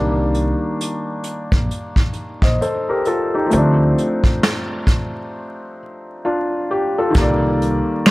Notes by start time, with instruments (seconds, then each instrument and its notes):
Already playing: upright bass C2, felt piano D#3 G3 A#3 D4
0.34 closed hi-hat
0.81 closed hi-hat
1.24 closed hi-hat
1.52 upright bass A#1, kick
1.71 closed hi-hat
1.96 kick
2.13 closed hi-hat
2.42 upright bass A#1, felt piano C5 D#5, kick
2.61 felt piano A4 C5, closed hi-hat
2.89 felt piano G4 A#4
3.05 felt piano F4 A4, closed hi-hat
3.34 felt piano D#4 G4
3.46 felt piano F3 A3
3.51 upright bass D2, felt piano C4, closed hi-hat
3.57 felt piano D4
3.98 closed hi-hat
4.24 kick
4.43 snare, closed hi-hat
4.87 kick, closed hi-hat
6.25 felt piano D4 F4
6.71 felt piano G4
6.98 felt piano F4 A4
7.10 felt piano D#3 G3
7.14 upright bass C2, felt piano A#3, kick, closed hi-hat
7.21 felt piano D5
7.62 closed hi-hat
8.06 finger snap, snare, closed hi-hat